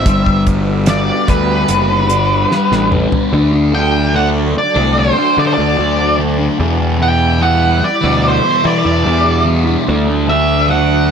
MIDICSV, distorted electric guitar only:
0, 0, Header, 1, 3, 480
1, 0, Start_track
1, 0, Tempo, 818554
1, 35, Time_signature, 4, 2, 24, 8
1, 6515, End_track
2, 0, Start_track
2, 0, Title_t, "Distorted electric guitar"
2, 0, Program_c, 0, 30
2, 37, Note_on_c, 0, 55, 71
2, 276, Note_on_c, 0, 59, 62
2, 511, Note_off_c, 0, 59, 0
2, 518, Note_on_c, 0, 59, 66
2, 747, Note_off_c, 0, 55, 0
2, 754, Note_on_c, 0, 55, 63
2, 987, Note_off_c, 0, 59, 0
2, 994, Note_on_c, 0, 59, 52
2, 1232, Note_on_c, 0, 62, 64
2, 1467, Note_off_c, 0, 55, 0
2, 1474, Note_on_c, 0, 55, 69
2, 1700, Note_off_c, 0, 59, 0
2, 1707, Note_on_c, 0, 59, 60
2, 1944, Note_on_c, 0, 50, 90
2, 1948, Note_off_c, 0, 59, 0
2, 1949, Note_off_c, 0, 55, 0
2, 1950, Note_off_c, 0, 62, 0
2, 1951, Note_on_c, 0, 57, 91
2, 1956, Note_on_c, 0, 62, 102
2, 2060, Note_off_c, 0, 62, 0
2, 2067, Note_on_c, 0, 62, 73
2, 2073, Note_off_c, 0, 57, 0
2, 2080, Note_on_c, 0, 57, 58
2, 2178, Note_off_c, 0, 50, 0
2, 2184, Note_off_c, 0, 57, 0
2, 2185, Note_on_c, 0, 50, 73
2, 2189, Note_off_c, 0, 62, 0
2, 2191, Note_on_c, 0, 57, 77
2, 2196, Note_on_c, 0, 62, 80
2, 2417, Note_off_c, 0, 50, 0
2, 2422, Note_off_c, 0, 57, 0
2, 2424, Note_on_c, 0, 50, 83
2, 2429, Note_on_c, 0, 57, 84
2, 2431, Note_off_c, 0, 62, 0
2, 2438, Note_on_c, 0, 62, 88
2, 2662, Note_off_c, 0, 50, 0
2, 2664, Note_off_c, 0, 57, 0
2, 2665, Note_off_c, 0, 62, 0
2, 2787, Note_on_c, 0, 62, 64
2, 2800, Note_on_c, 0, 57, 57
2, 3016, Note_off_c, 0, 62, 0
2, 3023, Note_on_c, 0, 62, 75
2, 3030, Note_off_c, 0, 57, 0
2, 3037, Note_on_c, 0, 57, 66
2, 3144, Note_on_c, 0, 50, 75
2, 3145, Note_off_c, 0, 57, 0
2, 3149, Note_off_c, 0, 62, 0
2, 3152, Note_on_c, 0, 57, 72
2, 3156, Note_on_c, 0, 62, 79
2, 3380, Note_off_c, 0, 50, 0
2, 3386, Note_off_c, 0, 57, 0
2, 3387, Note_on_c, 0, 50, 86
2, 3392, Note_off_c, 0, 62, 0
2, 3393, Note_on_c, 0, 57, 89
2, 3399, Note_on_c, 0, 62, 91
2, 3500, Note_off_c, 0, 62, 0
2, 3507, Note_on_c, 0, 62, 69
2, 3513, Note_off_c, 0, 57, 0
2, 3520, Note_on_c, 0, 57, 53
2, 3617, Note_off_c, 0, 50, 0
2, 3622, Note_off_c, 0, 57, 0
2, 3624, Note_on_c, 0, 50, 73
2, 3629, Note_on_c, 0, 57, 75
2, 3630, Note_off_c, 0, 62, 0
2, 3637, Note_on_c, 0, 62, 80
2, 3737, Note_off_c, 0, 62, 0
2, 3744, Note_on_c, 0, 62, 65
2, 3750, Note_off_c, 0, 57, 0
2, 3757, Note_on_c, 0, 57, 55
2, 3851, Note_off_c, 0, 62, 0
2, 3852, Note_off_c, 0, 50, 0
2, 3858, Note_off_c, 0, 57, 0
2, 3861, Note_on_c, 0, 40, 94
2, 3868, Note_on_c, 0, 47, 100
2, 3873, Note_on_c, 0, 52, 100
2, 3975, Note_off_c, 0, 52, 0
2, 3982, Note_on_c, 0, 52, 68
2, 3985, Note_off_c, 0, 47, 0
2, 3992, Note_on_c, 0, 47, 62
2, 4096, Note_off_c, 0, 40, 0
2, 4102, Note_off_c, 0, 47, 0
2, 4103, Note_on_c, 0, 40, 79
2, 4108, Note_off_c, 0, 52, 0
2, 4109, Note_on_c, 0, 47, 89
2, 4115, Note_on_c, 0, 52, 76
2, 4332, Note_off_c, 0, 40, 0
2, 4339, Note_on_c, 0, 40, 89
2, 4340, Note_off_c, 0, 47, 0
2, 4345, Note_off_c, 0, 52, 0
2, 4347, Note_on_c, 0, 47, 83
2, 4352, Note_on_c, 0, 52, 84
2, 4576, Note_off_c, 0, 40, 0
2, 4581, Note_off_c, 0, 47, 0
2, 4582, Note_off_c, 0, 52, 0
2, 4697, Note_on_c, 0, 52, 60
2, 4712, Note_on_c, 0, 47, 53
2, 4934, Note_off_c, 0, 52, 0
2, 4941, Note_on_c, 0, 52, 73
2, 4945, Note_off_c, 0, 47, 0
2, 4952, Note_on_c, 0, 47, 61
2, 5055, Note_on_c, 0, 40, 73
2, 5056, Note_off_c, 0, 47, 0
2, 5060, Note_off_c, 0, 52, 0
2, 5063, Note_on_c, 0, 47, 83
2, 5067, Note_on_c, 0, 52, 92
2, 5292, Note_off_c, 0, 40, 0
2, 5299, Note_off_c, 0, 47, 0
2, 5299, Note_on_c, 0, 40, 91
2, 5305, Note_off_c, 0, 52, 0
2, 5307, Note_on_c, 0, 47, 86
2, 5312, Note_on_c, 0, 52, 97
2, 5414, Note_off_c, 0, 52, 0
2, 5421, Note_on_c, 0, 52, 69
2, 5427, Note_off_c, 0, 47, 0
2, 5434, Note_on_c, 0, 47, 50
2, 5536, Note_off_c, 0, 40, 0
2, 5542, Note_off_c, 0, 47, 0
2, 5543, Note_on_c, 0, 40, 83
2, 5548, Note_off_c, 0, 52, 0
2, 5549, Note_on_c, 0, 47, 78
2, 5555, Note_on_c, 0, 52, 75
2, 5655, Note_off_c, 0, 52, 0
2, 5662, Note_on_c, 0, 52, 75
2, 5668, Note_off_c, 0, 47, 0
2, 5675, Note_on_c, 0, 47, 68
2, 5772, Note_off_c, 0, 52, 0
2, 5773, Note_off_c, 0, 40, 0
2, 5778, Note_off_c, 0, 47, 0
2, 5783, Note_on_c, 0, 50, 86
2, 5790, Note_on_c, 0, 57, 91
2, 5797, Note_on_c, 0, 62, 103
2, 5898, Note_off_c, 0, 62, 0
2, 5905, Note_on_c, 0, 62, 66
2, 5910, Note_off_c, 0, 57, 0
2, 5917, Note_on_c, 0, 57, 60
2, 6019, Note_off_c, 0, 50, 0
2, 6026, Note_on_c, 0, 50, 84
2, 6028, Note_off_c, 0, 57, 0
2, 6034, Note_off_c, 0, 62, 0
2, 6035, Note_on_c, 0, 57, 82
2, 6041, Note_on_c, 0, 62, 84
2, 6254, Note_off_c, 0, 50, 0
2, 6261, Note_on_c, 0, 50, 86
2, 6263, Note_off_c, 0, 57, 0
2, 6270, Note_off_c, 0, 62, 0
2, 6270, Note_on_c, 0, 57, 89
2, 6277, Note_on_c, 0, 62, 96
2, 6503, Note_off_c, 0, 50, 0
2, 6508, Note_off_c, 0, 57, 0
2, 6508, Note_off_c, 0, 62, 0
2, 6515, End_track
3, 0, Start_track
3, 0, Title_t, "Muted distorted electric guitar strokes"
3, 2669, Note_on_c, 9, 29, 45
3, 2727, Note_off_c, 9, 29, 0
3, 4583, Note_on_c, 9, 29, 45
3, 4642, Note_off_c, 9, 29, 0
3, 6515, End_track
0, 0, End_of_file